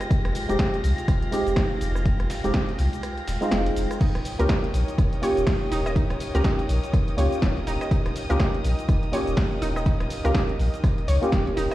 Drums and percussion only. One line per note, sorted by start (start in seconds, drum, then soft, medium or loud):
0.01 cross-stick medium
0.01 closed hi-hat soft
0.01 cabasa soft
0.11 kick loud
0.11 closed hi-hat medium
0.11 tambourine medium
0.11 cabasa soft
0.25 cross-stick medium
0.25 snare soft
0.25 closed hi-hat soft
0.35 open hi-hat loud
0.35 tambourine medium
0.35 cabasa medium
0.49 closed hi-hat medium
0.49 closed hi-hat soft
0.49 cabasa soft
0.59 kick loud
0.59 snare loud
0.59 closed hi-hat medium
0.59 tambourine medium
0.59 cabasa soft
0.74 closed hi-hat soft
0.84 open hi-hat medium
0.84 tambourine medium
0.84 cabasa medium
0.98 closed hi-hat medium
0.98 cabasa soft
1.08 kick loud
1.08 cross-stick medium
1.08 closed hi-hat medium
1.08 tambourine medium
1.08 cabasa soft
1.23 closed hi-hat soft
1.32 open hi-hat loud
1.32 tambourine medium
1.32 cabasa medium
1.47 closed hi-hat soft
1.47 cabasa soft
1.56 kick loud
1.56 snare loud
1.56 closed hi-hat medium
1.56 open hi-hat medium
1.56 cabasa soft
1.81 open hi-hat medium
1.81 tambourine medium
1.81 cabasa medium
1.96 cross-stick medium
1.96 cabasa medium
2.06 kick loud
2.06 closed hi-hat medium
2.06 tambourine medium
2.06 cabasa soft
2.20 cross-stick medium
2.20 closed hi-hat soft
2.30 snare loud
2.30 open hi-hat loud
2.30 open hi-hat medium
2.30 cabasa medium
2.44 closed hi-hat medium
2.44 cabasa soft
2.54 kick loud
2.54 snare loud
2.54 closed hi-hat medium
2.54 tambourine medium
2.54 cabasa soft
2.69 closed hi-hat soft
2.78 snare soft
2.78 open hi-hat medium
2.78 tambourine medium
2.78 cabasa medium
2.93 closed hi-hat medium
2.93 cabasa soft
3.03 cross-stick medium
3.03 closed hi-hat medium
3.03 tambourine medium
3.03 cabasa soft
3.18 closed hi-hat soft
3.28 snare loud
3.28 open hi-hat loud
3.28 open hi-hat medium
3.28 cabasa medium
3.42 closed hi-hat soft
3.42 cabasa soft
3.51 snare loud
3.51 closed hi-hat medium
3.51 tambourine medium
3.51 cabasa soft
3.66 closed hi-hat soft
3.76 open hi-hat medium
3.76 cabasa medium
3.91 cross-stick medium
3.91 closed hi-hat soft
3.91 cabasa soft
4.01 kick loud
4.01 closed hi-hat medium
4.01 crash medium
4.01 tambourine medium
4.01 cabasa soft
4.15 cross-stick medium
4.15 snare soft
4.15 closed hi-hat soft
4.25 open hi-hat loud
4.25 tambourine medium
4.25 cabasa medium
4.40 closed hi-hat medium
4.40 closed hi-hat soft
4.40 cabasa soft
4.49 kick loud
4.49 snare loud
4.49 closed hi-hat medium
4.49 tambourine medium
4.49 cabasa soft
4.64 closed hi-hat soft
4.74 open hi-hat loud
4.74 tambourine medium
4.74 cabasa medium
4.88 closed hi-hat medium
4.88 cabasa soft
4.98 kick loud
4.98 cross-stick medium
4.98 closed hi-hat medium
4.98 tambourine medium
4.98 cabasa soft
5.13 closed hi-hat soft
5.23 open hi-hat loud
5.23 tambourine medium
5.23 cabasa medium
5.37 closed hi-hat soft
5.37 cabasa soft
5.47 kick loud
5.47 snare loud
5.47 closed hi-hat medium
5.47 open hi-hat medium
5.47 cabasa soft
5.72 snare soft
5.72 open hi-hat medium
5.72 tambourine medium
5.72 cabasa medium
5.86 cross-stick medium
5.86 cabasa soft
5.96 kick loud
5.96 closed hi-hat medium
5.96 tambourine medium
5.96 cabasa soft
6.10 cross-stick medium
6.10 closed hi-hat soft
6.20 open hi-hat loud
6.20 tambourine medium
6.20 cabasa medium
6.35 closed hi-hat medium
6.35 cabasa soft
6.44 kick loud
6.44 snare loud
6.44 closed hi-hat medium
6.44 tambourine medium
6.44 cabasa soft
6.59 closed hi-hat soft
6.69 open hi-hat loud
6.69 tambourine medium
6.69 cabasa medium
6.84 closed hi-hat medium
6.84 cabasa soft
6.94 kick loud
6.94 cross-stick medium
6.94 closed hi-hat medium
6.94 tambourine medium
6.94 cabasa soft
7.08 closed hi-hat soft
7.18 open hi-hat loud
7.18 tambourine medium
7.18 cabasa medium
7.32 closed hi-hat soft
7.32 cabasa soft
7.42 kick loud
7.42 snare loud
7.42 closed hi-hat medium
7.42 tambourine medium
7.42 cabasa soft
7.57 closed hi-hat soft
7.67 snare medium
7.67 open hi-hat loud
7.67 tambourine medium
7.67 cabasa medium
7.81 cross-stick medium
7.81 closed hi-hat soft
7.81 cabasa soft
7.91 kick loud
7.91 closed hi-hat medium
7.91 tambourine medium
7.91 cabasa soft
8.06 cross-stick medium
8.06 snare soft
8.06 closed hi-hat soft
8.16 open hi-hat loud
8.16 tambourine medium
8.16 cabasa medium
8.30 closed hi-hat medium
8.30 closed hi-hat soft
8.30 cabasa soft
8.39 kick loud
8.39 snare loud
8.39 closed hi-hat medium
8.39 tambourine medium
8.39 cabasa soft
8.54 closed hi-hat soft
8.64 open hi-hat loud
8.64 tambourine medium
8.64 cabasa medium
8.79 closed hi-hat medium
8.79 cabasa soft
8.89 kick loud
8.89 cross-stick medium
8.89 closed hi-hat medium
8.89 tambourine medium
8.89 cabasa soft
9.03 closed hi-hat soft
9.13 open hi-hat loud
9.13 tambourine medium
9.13 cabasa medium
9.27 closed hi-hat soft
9.27 cabasa soft
9.37 kick loud
9.37 snare loud
9.37 closed hi-hat medium
9.37 open hi-hat medium
9.37 cabasa soft
9.62 snare soft
9.62 open hi-hat loud
9.62 tambourine medium
9.62 cabasa medium
9.76 cross-stick medium
9.76 cabasa soft
9.86 kick loud
9.86 closed hi-hat medium
9.86 tambourine medium
9.86 cabasa soft
10.00 cross-stick medium
10.00 closed hi-hat soft
10.10 open hi-hat loud
10.10 tambourine medium
10.10 cabasa medium
10.25 closed hi-hat medium
10.25 cabasa soft
10.34 kick loud
10.34 snare loud
10.34 closed hi-hat medium
10.34 tambourine medium
10.34 cabasa soft
10.49 closed hi-hat soft
10.59 open hi-hat loud
10.59 tambourine medium
10.59 cabasa medium
10.74 closed hi-hat soft
10.74 cabasa soft
10.84 kick loud
10.84 cross-stick medium
10.84 closed hi-hat medium
10.84 tambourine medium
10.84 cabasa soft
10.98 closed hi-hat soft
11.08 open hi-hat loud
11.08 tambourine medium
11.08 cabasa medium
11.22 closed hi-hat soft
11.22 cabasa soft
11.32 kick loud
11.32 snare loud
11.32 closed hi-hat medium
11.32 tambourine medium
11.32 cabasa soft
11.47 closed hi-hat soft
11.57 snare medium
11.57 open hi-hat loud
11.57 tambourine medium
11.57 cabasa medium
11.71 cross-stick medium
11.71 closed hi-hat soft